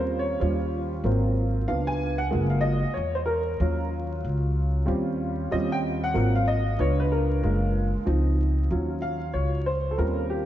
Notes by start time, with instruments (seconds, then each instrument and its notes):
Already playing: upright bass D#2, upright piano G3 C4 C#4 F4
0.00 upright piano C5
0.19 upright piano C#5
0.40 upright bass D#2, upright piano G3 C#4 F4 C5
1.04 upright bass G#1, upright piano F#3 A#3 C4 F4
1.67 upright bass C#2, upright piano B3 D4 F4 F5
1.87 upright piano G#5
2.18 upright piano F#5
2.31 upright bass F#1, upright piano G#3 A#3 F4
2.50 upright piano F5
2.61 upright piano D#5
2.86 muted upright bass stroke
2.94 upright bass E2, upright piano C#5
3.15 upright piano C5
3.26 upright piano A#4
3.59 upright bass D#2, upright piano F#3 C#4 F4
4.24 upright bass C#2
4.86 upright bass D#2, upright piano G3 C4 C#4 F4
5.51 upright bass D#2, upright piano G3 C4 C#4 F4 D#5
5.72 upright piano G5
6.04 upright piano F#5
6.14 upright bass G#1, upright piano F#3 A#3 C4 F4
6.36 upright piano F5
6.48 upright piano D#5
6.79 upright bass C#2, upright piano B3 D4 F4 C#5
7.00 upright piano B4
7.12 upright piano A#4
7.43 upright bass F#1, upright piano G#3 A#3 F4
7.96 muted upright bass stroke
8.05 upright bass C#2, upright piano F3 C4 D#4
8.71 upright bass D#2, upright piano F#3 C#4 F4
9.02 upright piano F5
9.33 upright bass C#2, upright piano C#5
9.66 upright piano C5
9.91 upright piano A4
9.98 upright bass D#2, upright piano G3 C4 C#4 F4 A#4
10.30 upright piano G4